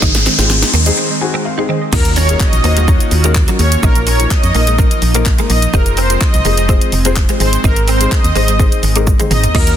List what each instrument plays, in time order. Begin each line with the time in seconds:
Already playing: analog synth pad D#3 G#3 C4, grand piano G#3 C4 D#4 G#4, riser
0.02 fm bass G#1, synth pluck D#3, clean electric guitar D#4, kick, snare, shaker
0.15 snare, closed hi-hat, shaker
0.26 synth pluck D#3, clean electric guitar C4, snare, open hi-hat, shaker
0.38 fm bass G#1, grand piano G#3 C4 D#4 F4, synth pluck C4, muted clean electric guitar stroke, snare, closed hi-hat, shaker
0.50 synth pluck D#3, muted clean electric guitar stroke, snare, shaker
0.62 synth pluck D#4, snare, closed hi-hat, shaker
0.73 fm bass D#2, clean electric guitar A#3, open hi-hat, shaker
0.86 grand piano G#3 C4 D#4 G#4, clean electric guitar G#3, synth pluck D#5, closed hi-hat, shaker
0.98 clean electric guitar C4
1.10 synth pluck G#3
1.21 grand piano G#3 C4 D#4 F#4 G#5, muted clean electric guitar stroke
1.34 synth pluck C4, clean electric guitar C4
1.45 grand piano F5, muted clean electric guitar stroke
1.58 grand piano G#3 C4 D#4 G#4, clean electric guitar D#4
1.69 synth pluck D#3, clean electric guitar C4, grand piano D#5
1.81 synth pluck D#5
1.93 fm bass D#2, analog synth pad D#3 A#3 C#4 F4 F#4, grand piano A#3 C#4 D#4 F#4 A#4, clean electric guitar D#4, supersaw synth A#4, kick, crash, impact, shaker
2.05 closed hi-hat, shaker
2.16 clean electric guitar C#4, supersaw synth C#5, open hi-hat, shaker
2.29 grand piano A#3 C#4 D#4 F#4 G#4, muted clean electric guitar stroke, closed hi-hat, shaker
2.40 supersaw synth D#5, muted clean electric guitar stroke, kick, clap, shaker
2.53 fm bass A#1, closed hi-hat, shaker
2.64 fm bass D#2, grand piano A#3 C#4 D#4 F#4 C5, clean electric guitar A#3, supersaw synth D#5, open hi-hat, shaker
2.77 clean electric guitar G#3, closed hi-hat, shaker
2.88 grand piano A#3 C#4 D#4 F#4 C#5, clean electric guitar A#3, kick, shaker
3.00 closed hi-hat, shaker
3.11 fm bass D#2, muted clean electric guitar stroke, open hi-hat, shaker
3.24 clean electric guitar G#3, grand piano A#3 C#4 D#4 F#4 A#4, closed hi-hat, shaker
3.35 kick, clap, shaker
3.48 clean electric guitar F#3, grand piano A#3 C#4 D#4 F#4 A#4, closed hi-hat, shaker
3.59 fm bass D#2, clean electric guitar G#3, supersaw synth C#5, open hi-hat, shaker
3.72 closed hi-hat, shaker
3.83 fm bass A#1, grand piano F3 A#3 D#4 F4 A#4, analog synth pad F3 D#4, clean electric guitar D#4, supersaw synth A#4, kick, shaker
3.95 closed hi-hat, shaker
4.07 clean electric guitar C#4, supersaw synth C#5, open hi-hat, shaker
4.19 grand piano F3 A#3 D#4 F4 A#4, muted clean electric guitar stroke, closed hi-hat, shaker
4.31 supersaw synth D#5, muted clean electric guitar stroke, kick, clap, shaker
4.43 fm bass F2, closed hi-hat, shaker
4.54 fm bass A#1, grand piano F3 A#3 D#4 F4 A#4, clean electric guitar A#3, supersaw synth D#5, open hi-hat, shaker
4.67 clean electric guitar G#3, closed hi-hat, shaker
4.78 grand piano F3 A#3 D#4 F4 A#4, clean electric guitar A#3, kick, shaker
4.91 closed hi-hat, shaker
5.02 fm bass A#1, muted clean electric guitar stroke, open hi-hat, shaker
5.15 grand piano F3 A#3 D#4 F4 A#4, clean electric guitar A#3, closed hi-hat, shaker
5.26 muted clean electric guitar stroke, kick, clap, shaker
5.38 grand piano F3 A#3 D#4 F4 A#4, clean electric guitar G#3, closed hi-hat, shaker
5.50 fm bass A#1, clean electric guitar A#3, supersaw synth D#5, open hi-hat, shaker
5.62 closed hi-hat, shaker
5.73 fm bass F1, grand piano G#3 C4 F4 G#4 C5, analog synth pad G#3 C4, clean electric guitar D#4, supersaw synth A#4, kick, shaker
5.86 closed hi-hat, shaker
5.97 clean electric guitar C4, supersaw synth C5, open hi-hat, shaker
6.10 grand piano G#3 C4 F4 G#4 C5, muted clean electric guitar stroke, closed hi-hat, shaker
6.21 supersaw synth D#5, muted clean electric guitar stroke, kick, clap, shaker
6.34 fm bass C2, closed hi-hat, shaker
6.45 fm bass F1, grand piano G#3 C4 F4 G#4 C5, clean electric guitar A#3, supersaw synth D#5, open hi-hat, shaker
6.57 clean electric guitar G#3, closed hi-hat, shaker
6.69 grand piano G#3 C4 F4 G#4 C5, clean electric guitar C4, kick, shaker
6.81 closed hi-hat, shaker
6.92 fm bass F1, muted clean electric guitar stroke, open hi-hat, shaker
7.05 grand piano G#3 C4 F4 G#4 C5, clean electric guitar A#3, closed hi-hat, shaker
7.16 muted clean electric guitar stroke, kick, clap, shaker
7.29 grand piano G#3 C4 F4 G#4 C5, clean electric guitar G#3, closed hi-hat, shaker
7.40 fm bass G#1, analog synth pad D#3, clean electric guitar G#3, grand piano G#3 C4 D#4 G#4 C5, supersaw synth C5, open hi-hat, shaker
7.53 closed hi-hat, shaker
7.64 fm bass G#1, clean electric guitar D#4, supersaw synth A#4, kick, shaker
7.76 closed hi-hat, shaker
7.88 clean electric guitar C4, supersaw synth C5, open hi-hat, shaker
8.00 grand piano G#3 C4 D#4 G#4 C5, muted clean electric guitar stroke, closed hi-hat, shaker
8.11 supersaw synth D#5, muted clean electric guitar stroke, kick, clap, shaker
8.24 fm bass D#2, closed hi-hat, shaker
8.35 fm bass G#1, grand piano G#3 C4 D#4 G#4 C5, clean electric guitar A#3, supersaw synth D#5, open hi-hat, shaker
8.48 clean electric guitar G#3, closed hi-hat, shaker
8.59 grand piano G#3 C4 D#4 G#4 C5, clean electric guitar A#3, kick, shaker
8.72 closed hi-hat, shaker
8.83 fm bass G#1, muted clean electric guitar stroke, open hi-hat, shaker
8.96 grand piano G#3 C4 D#4 G#4 A#4, clean electric guitar A#3, closed hi-hat, shaker
9.07 muted clean electric guitar stroke, kick, high tom, shaker
9.19 grand piano G#3 C4 D#4 G#4 C5, clean electric guitar G#3, closed hi-hat, mid tom, shaker
9.31 fm bass G#1, clean electric guitar A#3, supersaw synth D#5, mid tom, open hi-hat, shaker
9.44 closed hi-hat, floor tom, shaker
9.54 fm bass D#2, analog synth pad D#3 A#3 C#4 F4 F#4, grand piano A#3 C#4 D#4 F#4 A#4, clean electric guitar D#4, supersaw synth A#4, kick, crash
9.67 closed hi-hat, shaker